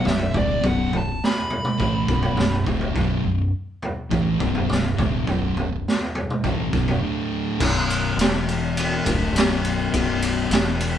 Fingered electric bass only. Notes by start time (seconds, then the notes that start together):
0.05 B0
0.34 D1
0.64 B0
0.93 B0
1.80 A1
2.09 B0
2.37 B0
2.67 D1
2.96 B0
3.24 B0
4.11 A1
4.40 B0
4.70 B0
4.99 D1
5.27 B0
5.56 B0
6.44 A1
6.74 B0
7.61 B0
8.16 E1
9.06 D1
9.33 B0
9.94 B0
10.50 E1